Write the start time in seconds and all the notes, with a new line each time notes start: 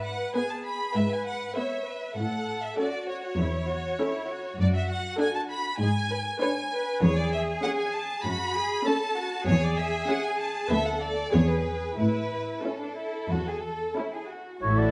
Already playing: G#2 B4
0.04 F#5
0.35 B3 G#4 B4 G#5
0.50 A5
0.65 B5
0.96 G#2 B4 E5
1.12 G#5
1.27 F#5
1.56 B3 B4 C#5 E5
1.87 B4
2.16 A2 A4 F#5
2.62 E5
2.78 C#4 F#4 A4 D5
3.08 C#5
3.24 C#5
3.38 E2 E4
3.69 F#4
4.00 C#4 E4 A4
4.31 F#4
4.60 F#2 D5
4.75 E5
4.89 F#5
5.20 D4 A4 G#5
5.35 A5
5.51 B5
5.79 G#2 G#4 G#5
6.10 B4
6.40 D4 B4 C#5 G#5
6.72 B4
7.02 E2 G#4 C#5
7.17 D5
7.32 E5
7.63 C#4 G#4 F#5
7.78 G#5
7.93 A5
8.23 F#2 F#4 B5
8.55 G#4
8.85 C#4 A4 A5
9.16 F#4
9.46 E2 G#4 C#5
9.63 D5
9.78 E5
10.08 C#4 G#4 F#5
10.23 G#5
10.39 A5
10.69 D2 B3 A4 B4 E5
10.85 F#5
11.01 D5
11.32 E2 B3 G#4 C#5
11.49 B4
11.97 A2 E4 B4
12.62 C#4 E4 A4
12.80 D4
12.97 E4
13.31 E2 F#4
13.48 G#4
13.63 A4
13.96 C#4 E4
14.13 G#4
14.29 F#4
14.62 A1 A2 E4 F#4 A4 C#5
14.78 D5